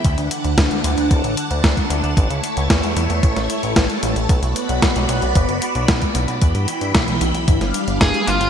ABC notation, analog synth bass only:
X:1
M:4/4
L:1/16
Q:1/4=113
K:Bm
V:1 name="Analog synth bass" clef=bass
D,, D,, z D,, D,, D,, D,, D,, D,,, A,,, z D,, D,, z D,, D,, | A,,, C,, z C,, E,, E,, E,, E,, A,,, A,,, z A,,, A,,, z A,,, A,,, | B,,, B,,, z B,,, B,,, B,,, B,,, B,,, F,,, F,,, z B,,, B,,, z B,,, B,,, | E,, G,, z G,, B,,, B,,, B,,, B,,, G,,, G,,, z G,,, G,,, z G,,, G,,, |]